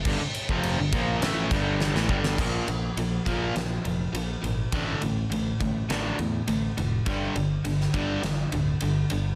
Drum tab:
CC |x-x-x-x-x-x-----|x---------------|----------------|----------------|
RD |----------------|--x-x-x-x-x-x-x-|x-x-x-x-x-x-x-x-|x-x-x-x-x-x-x-x-|
SD |--------o---oo-o|--------o-------|--------o-------|-----o--o-------|
BD |o--o--o---o---o-|o-----o---------|o-----o---------|o-----o---------|